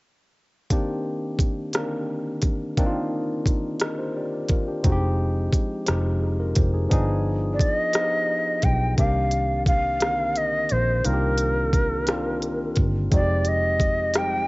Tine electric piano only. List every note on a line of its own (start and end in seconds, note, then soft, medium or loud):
0.70 1.39 D#3 medium
0.70 1.39 A#3 medium
0.70 1.40 C4 medium
0.70 1.40 D4 medium
0.70 1.41 G4 medium
1.73 1.80 D3 soft
1.73 2.43 A#3 soft
1.73 2.43 C4 soft
1.73 2.44 D4 medium
1.73 2.44 A#4 medium
1.80 2.46 D#3 medium
2.77 3.46 D#3 medium
2.77 3.47 A#3 medium
2.77 3.47 C4 medium
2.77 3.47 D4 medium
2.77 2.85 D#4 medium
2.86 3.51 F4 medium
3.81 3.98 A#4 soft
3.81 3.97 D#5 soft
3.98 4.15 G4 soft
3.98 4.15 C5 medium
4.16 4.49 G4 soft
4.16 4.49 D5 soft
4.50 4.67 F4 soft
4.50 4.66 A#4 soft
4.68 5.00 D4 soft
4.68 4.91 G4 soft
4.83 5.53 F3 medium
4.83 5.53 G#3 medium
4.83 5.53 C4 medium
4.83 5.54 D#4 medium
4.83 4.91 F#4 medium
4.92 5.57 G4 medium
5.86 6.56 F3 medium
5.86 6.56 G#3 soft
5.86 6.57 C4 soft
5.86 6.22 D#4 medium
5.86 6.23 G4 medium
6.22 6.39 D#4 soft
6.22 6.38 G#4 soft
6.40 6.56 F4 medium
6.40 6.56 A#4 medium
6.56 6.73 G4 soft
6.56 6.73 C5 soft
6.74 6.90 D#4 soft
6.74 6.91 G#4 medium
6.89 7.59 F3 medium
6.89 7.60 B3 medium
6.89 7.60 D4 medium
6.89 7.60 D#4 medium
6.89 7.61 G#4 medium
7.93 8.63 F3 medium
7.93 8.63 B3 soft
7.93 8.64 D#4 medium
7.93 8.02 F4 medium
8.03 8.68 G4 medium
8.97 9.66 D#3 medium
8.97 9.67 A#3 medium
8.97 9.67 C4 medium
8.97 9.68 D4 medium
8.97 9.68 G4 medium
10.00 10.71 D3 soft
10.00 10.70 D#3 medium
10.00 10.70 A#3 soft
10.00 10.71 C4 soft
10.00 10.71 A#4 medium
11.04 11.73 D#3 medium
11.04 11.74 A#3 medium
11.04 11.74 C4 medium
11.04 11.75 D4 medium
11.04 11.12 F4 medium
11.13 11.78 G4 medium
12.07 12.77 D#3 medium
12.07 12.77 A#3 medium
12.07 12.77 C4 medium
12.07 12.78 D4 medium
12.07 12.78 F4 medium
13.11 13.80 F3 medium
13.11 13.80 G#3 medium
13.11 13.81 C4 medium
13.11 13.81 D#4 medium
13.11 13.19 F#4 medium
13.20 13.85 G4 medium
14.14 14.48 F3 medium
14.14 14.22 G3 soft
14.14 14.48 C4 soft
14.14 14.48 D#4 soft
14.14 14.48 G4 medium
14.21 14.48 G#3 soft